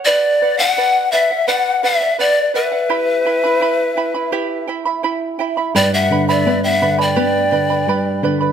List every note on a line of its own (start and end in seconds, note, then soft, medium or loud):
0.05 0.41 B4 medium
0.05 0.59 D5 medium
0.05 0.60 D5 loud
0.05 0.41 D5 medium
0.05 0.42 F#5 medium
0.42 0.59 B4 medium
0.42 0.59 D5 medium
0.42 0.59 F#5 medium
0.58 0.77 D5 soft
0.58 1.14 F#5 medium
0.58 1.13 F#5 loud
0.58 0.77 F#5 medium
0.78 1.12 B4 medium
0.78 1.12 D5 medium
0.78 1.13 F#5 medium
1.12 1.30 B4 medium
1.12 1.30 D5 medium
1.12 1.49 E5 loud
1.12 1.49 E5 medium
1.12 1.29 F#5 medium
1.31 1.47 D5 soft
1.31 1.48 F#5 medium
1.47 1.82 B4 medium
1.47 1.83 D5 medium
1.47 1.85 F#5 medium
1.47 1.83 F#5 medium
1.47 1.84 F#5 medium
1.47 1.52 G5 medium
1.83 2.01 B4 medium
1.83 2.01 D5 medium
1.83 2.18 E5 medium
1.83 2.19 E5 medium
1.83 1.99 F#5 medium
2.00 2.18 D5 soft
2.00 2.18 F#5 medium
2.19 2.53 B4 medium
2.19 2.52 D5 medium
2.19 2.54 D5 medium
2.19 2.52 D5 loud
2.19 2.54 F#5 medium
2.54 2.72 B4 medium
2.54 4.64 B4 medium
2.54 2.72 D5 medium
2.54 4.64 E5 medium
2.54 2.71 F#5 medium
2.72 2.89 D5 soft
2.72 2.89 F#5 medium
2.89 3.25 E4 medium
2.89 3.25 G4 medium
2.89 3.25 E5 medium
2.89 3.24 G5 medium
2.89 3.26 B5 medium
3.25 3.44 E4 medium
3.25 3.43 E5 medium
3.25 3.43 G5 medium
3.25 3.42 B5 medium
3.44 3.60 E4 medium
3.44 3.61 E5 medium
3.44 3.61 B5 medium
3.61 3.96 E4 medium
3.61 3.96 E5 medium
3.61 3.96 G5 medium
3.61 3.97 B5 medium
3.97 4.14 E4 medium
3.97 4.14 E5 medium
3.97 4.14 G5 medium
3.97 4.13 B5 medium
4.14 4.31 E4 soft
4.14 4.31 E5 medium
4.14 4.32 B5 medium
4.32 4.67 E4 medium
4.32 4.68 G4 medium
4.32 4.68 E5 loud
4.32 4.66 G5 medium
4.32 4.68 B5 loud
4.68 4.86 E4 medium
4.68 4.85 E5 medium
4.68 4.85 G5 medium
4.68 4.84 B5 medium
4.85 5.03 E4 soft
4.85 5.03 E5 medium
4.85 5.03 B5 medium
5.03 5.38 E4 medium
5.03 5.39 E5 medium
5.03 5.38 G5 medium
5.03 5.39 B5 medium
5.39 5.57 E4 medium
5.39 5.57 E5 medium
5.39 5.56 G5 medium
5.39 5.56 B5 medium
5.57 5.75 E4 soft
5.57 5.75 E5 medium
5.57 5.74 B5 medium
5.75 8.52 G2 medium
5.75 6.10 G4 medium
5.75 6.10 B4 medium
5.75 6.10 D5 medium
5.75 5.92 D5 loud
5.75 6.10 G5 medium
5.75 5.91 G5 medium
5.75 6.10 B5 medium
5.93 6.26 E5 medium
5.93 6.26 F#5 medium
6.10 6.44 D3 medium
6.10 6.28 B4 medium
6.10 6.28 D5 medium
6.10 6.28 G5 medium
6.10 6.28 B5 medium
6.28 6.46 B4 soft
6.28 6.46 D5 medium
6.28 6.61 D5 medium
6.28 6.61 E5 medium
6.28 6.46 B5 medium
6.46 6.80 B3 medium
6.46 6.80 B4 medium
6.46 6.81 D5 medium
6.46 6.80 G5 medium
6.46 6.81 B5 medium
6.64 7.03 E5 loud
6.64 6.69 G5 medium
6.68 7.00 F#5 medium
6.81 7.16 D3 soft
6.81 6.99 B4 medium
6.81 6.98 D5 medium
6.81 6.98 G5 medium
6.81 6.97 B5 medium
6.99 7.15 B4 soft
6.99 7.15 D5 soft
6.99 8.24 D5 medium
6.99 7.04 A5 medium
6.99 7.15 B5 medium
7.03 8.23 G5 medium
7.16 7.51 B3 medium
7.16 7.52 G4 medium
7.16 7.51 B4 medium
7.16 7.52 D5 medium
7.16 7.50 G5 medium
7.16 7.52 B5 medium
7.51 7.86 D3 medium
7.51 7.69 B4 medium
7.51 7.69 D5 medium
7.51 7.69 G5 medium
7.51 7.69 B5 medium
7.70 7.88 B4 soft
7.70 7.88 D5 soft
7.70 7.87 B5 soft
7.87 8.22 G3 medium
7.87 8.22 B4 medium
7.87 8.23 D5 medium
7.87 8.22 G5 medium
7.87 8.24 B5 medium
8.23 8.52 D3 medium
8.23 8.41 B4 medium
8.23 8.40 D5 medium
8.23 8.41 G5 medium
8.23 8.39 B5 medium
8.41 8.52 B4 soft
8.41 8.52 D5 medium
8.41 8.52 B5 medium